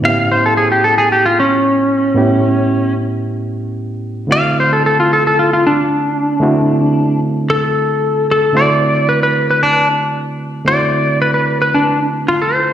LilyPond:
<<
  \new Staff \with { instrumentName = "Electric slide guitar" } { \time 4/4 \key d \mixolydian \tempo 4 = 113 f''8 c''16 a'16 gis'16 g'16 a'16 gis'16 g'16 f'16 cis'4.~ | cis'4. r2 r8 | f''8 c''16 a'16 a'16 f'16 a'16 a'16 f'16 f'16 d'4.~ | d'4. r8 a'4. a'8 |
d''4 b'16 b'8 b'16 d'8 r4. | d''4 b'16 b'8 b'16 d'8 r8 f'16 a'16 c''8 | }
  \new Staff \with { instrumentName = "Reed electric piano" } { \time 4/4 \key d \mixolydian <a, b cis' e' g'>1 | <a, b cis' e' g'>1 | <d a c' e' fis'>1 | <d a c' e' fis'>1 |
<d a c' e' fis'>1 | <d a c' e' fis'>1 | }
>>